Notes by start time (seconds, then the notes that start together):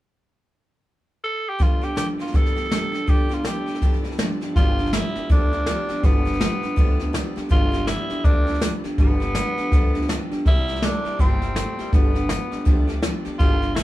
1.24 A4
1.49 G4
1.59 G2 D3 F3 B3 D4 F4 G4, kick, snare
1.81 G2 D3 F3 B3 D4 G4, snare
1.96 G2 D3 F3 B3 D4 G4, snare, hi-hat pedal
2.18 G2 D3 B3 D4 F4 G4, snare
2.22 F3
2.27 snare
2.32 G2 D3 E3 F3 B3 D4 G4 A4, kick, snare
2.46 snare
2.55 G2 E3 F3 B3 D4 G4, snare
2.64 snare
2.69 G2 D3 F3 B3 D4 G4, snare, hi-hat pedal
2.92 G2 D3 F3 B3 D4 G4, snare
3.06 G2 D3 F3 B3 D4 G4, kick, snare
3.29 G2 D3 F3 B3 D4 G4, snare
3.34 F4
3.44 G2 D3 F3 B3 D4 G4, snare, hi-hat pedal
3.66 G2 D3 F3 B3 D4 G4, snare
3.75 snare
3.82 G2 D3 E3 F3 B3 D4 G4, kick, snare
3.93 snare
4.03 G2 E3 B3 D4 G4, snare
4.08 F3, snare
4.18 G2 D3 F3 B3 D4 G4, snare, hi-hat pedal
4.41 G2 D3 F3 B3 D4 G4, snare
4.56 G1 G2 D3 F3 B3 D4 F4 G4, kick, snare
4.78 G2 D3 B3 D4 G4, snare
4.82 F3, snare
4.93 G2 E3 F3 B3 D4 E4 G4, snare, hi-hat pedal
5.15 G2 D3 F3 B3 D4 G4, muted upright bass stroke, snare
5.29 D2 G2 D3 F3 B3 D4 G4, kick, snare
5.52 G2 D3 F3 B3 D4 G4, snare
5.66 G2 E3 F3 B3 D4, snare, hi-hat pedal
5.71 G4
5.89 G2 D3 F3 B3 D4 G4, muted upright bass stroke, snare
6.03 G1 G2 D3 F3 B3 D4 G4, kick, snare
6.25 G2 D3 F3 B3 D4 G4, snare
6.33 snare
6.40 G2 E3 F3 B3 D4 G4, snare, hi-hat pedal
6.63 G2 D3 F3 B3 D4 G4, muted upright bass stroke, snare
6.76 D2 G2 D3 F3 B3 D4 G4, kick, snare
6.99 G2 D3 F3 B3 D4 G4, snare
7.13 G2 E3 F3 B3 D4 G4, snare, hi-hat pedal
7.36 G2 D3 F3 B3 D4 G4, muted upright bass stroke, snare
7.49 G1 G2 D3 F3 B3 D4 F4 G4, kick, snare
7.72 G2 D3 F3 B3 D4 G4, snare
7.87 G2 E3 F3 B3 D4 E4 G4, snare, hi-hat pedal
8.10 G2 D3 F3 B3 D4 G4, muted upright bass stroke, snare
8.24 D2 G2 D3 F3 B3 D4 G4, kick, snare
8.47 G2 D3 F3 B3 D4 G4, snare
8.54 snare
8.60 G2 E3 F3 B3 D4 G4, snare, hi-hat pedal
8.84 G2 D3 F3 B3 D4 G4, muted upright bass stroke, snare
8.98 G1 G2 D3 F3 B3 D4 G4, kick, snare
9.20 G2 D3 F3 B3 D4 G4, snare
9.35 G2 E3 F3 B3 D4 G4, snare, hi-hat pedal
9.57 G2 D3 B3 D4 G4, muted upright bass stroke, snare
9.62 F3
9.71 D2 G2 D3 F3 B3 D4 G4, kick, snare
9.94 G2 D3 B3 D4 G4, snare
9.98 F3, snare
10.08 G2 E3 F3 B3 D4 G4, snare, hi-hat pedal
10.30 G2 D3 D4 G4, muted upright bass stroke, snare
10.34 F3 B3
10.45 C2 C3 G3 A#3 E4 G4, kick, snare
10.67 C3 G3 A#3 E4 G4, snare
10.76 snare
10.82 C3 G3 A3 A#3 D4 E4 G4, snare, hi-hat pedal
11.05 C3 G3 A#3 E4 G4, muted upright bass stroke, snare
11.18 G1 C3 G3 A#3 C4 E4, kick, snare
11.22 G4
11.41 C3 G3 E4 G4, snare
11.46 A#3
11.54 C3 G3 A3 A#3, snare, hi-hat pedal
11.59 E4 G4
11.78 C3 G3 E4 G4, muted upright bass stroke, snare
11.82 A#3
11.92 G1 G2 D3 F3 B3 D4, kick, snare
11.96 G4
12.14 G2 D3 B3 D4 G4, snare
12.19 F3
12.28 G2 E3 F3 B3 D4, snare, hi-hat pedal
12.32 G4
12.50 G2 D3 B3 D4 G4, muted upright bass stroke, snare
12.55 F3
12.64 D2 G2 D3 F3 B3 D4 G4, kick, snare
12.87 G2 D3 F3 B3 D4 G4, snare
13.02 G2 E3 F3 B3 D4, snare, hi-hat pedal
13.06 G4
13.25 G2 D3 F3 B3 D4 G4, muted upright bass stroke, snare
13.38 G1 G2 D3 F3 B3 D4 F4 G4, kick, snare
13.61 G2 D3 F3 B3 D4 G4, snare
13.74 G2 E3 F3 B3 D4 E4 G4, snare, hi-hat pedal